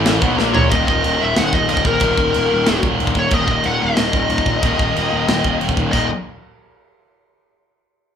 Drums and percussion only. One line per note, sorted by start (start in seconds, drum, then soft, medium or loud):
0.06 snare loud
0.06 china medium
0.22 kick medium
0.39 snare medium
0.55 floor tom medium
0.71 kick loud
0.71 china soft
0.88 kick medium
1.04 china medium
1.37 snare loud
1.37 china medium
1.53 kick medium
1.69 china medium
1.77 kick medium
1.85 kick medium
2.00 kick loud
2.00 china medium
2.17 kick medium
2.34 china medium
2.66 snare loud
2.66 china medium
2.83 kick medium
3.00 china medium
3.07 kick medium
3.15 kick medium
3.31 kick loud
3.31 china medium
3.48 kick medium
3.64 china soft
3.97 snare loud
3.97 china medium
4.13 kick medium
4.30 china soft
4.38 kick medium
4.46 kick medium
4.63 kick loud
4.63 china soft
4.79 kick medium
4.96 china medium
5.29 snare loud
5.29 china medium
5.44 kick medium
5.61 china soft
5.69 kick medium
5.77 kick medium
5.93 kick medium
5.93 splash medium